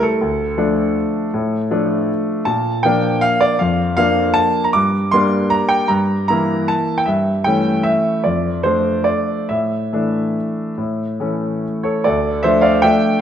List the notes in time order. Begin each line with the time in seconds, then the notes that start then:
Already playing: G3 A3 E4
0.02 A4
0.21 D2
0.57 F3 A3 D4
1.34 A2
1.71 F3 A3 D4
2.45 A#2 A5
2.83 F3 A#3 D4 G5
3.21 F5
3.41 D5
3.59 F2 F5
3.97 F3 A#3 D4 F5
4.34 A5
4.64 A#5
4.73 G2 D6
5.11 G3 A#3 D4 C6
5.50 A#5
5.69 G5
5.88 G2 A#5
6.28 E3 A#3 E4 A#5
6.68 A5
6.98 G5
7.06 G2 E5
7.44 E3 A3 C#4 G5
7.83 E5
8.24 F2 D5
8.63 F3 A3 D4 C5
9.04 D5
9.49 A2 E5
9.93 E3 A3 D4
10.78 A2
11.20 E3 A3 C#4
11.83 A4 C#5
12.04 D2 A4 D5
12.43 F3 A3 D4 C5 E5
12.61 D5 F5
12.82 F3 A3 D4 E5 G5